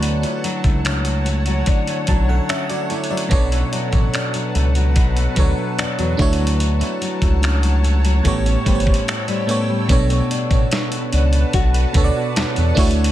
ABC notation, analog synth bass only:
X:1
M:4/4
L:1/16
Q:1/4=73
K:Bm
V:1 name="Analog synth bass" clef=bass
D,,2 z C,,4- C,, z2 B,,,2 z4 | B,,,2 z A,,, z2 C,,2 B,,,2 D,, z E,, E,, D,,2- | D,,2 z C,,4- C,, A,,,2 G,,,2 z4 | B,,,2 z A,,, z2 C,,2 B,,,2 D,, z E,, E,, D,,2 |]